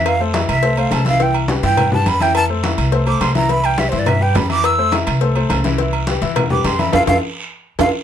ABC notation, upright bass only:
X:1
M:4/4
L:1/8
Q:1/4=210
K:Flyd
V:1 name="Upright bass" clef=bass
F,,3 C,,3 C,,2- | C,,3 G,,3 F,,2- | F,,3 C,,3 C,,2- | C,,3 G,,3 F,,2- |
F,,3 C,,3 C,,2- | C,,3 E,,3 F,,2 | F,, F,, z4 F,, z |]